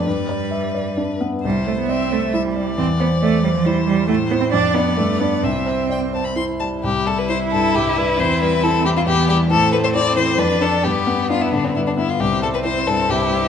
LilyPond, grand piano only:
\new Staff \with { instrumentName = "Grand piano" } { \time 3/4 \key c \major \tempo 4 = 134 g,8 d''8 e''8 d''8 d'8 b8 | c,8 c''8 d''8 c''8 e'8 g8 | e,8 c''8 d''8 c''8 e'8 g8 | a,8 <e' c''>8 f,8 <d' d''>8 g,8 <d' d''>8 |
c,8 c''8 d''8 c''8 e'8 g8 | c,8 g8 e'8 g,8 c,8 g8 | e,8 g8 e'8 e8 e,8 g8 | a,8 a8 e'8 e8 f,8 <d' d''>8 |
g,8 b8 d'8 d8 g,8 b8 | c,8 g8 e'8 g,8 c,8 g8 | }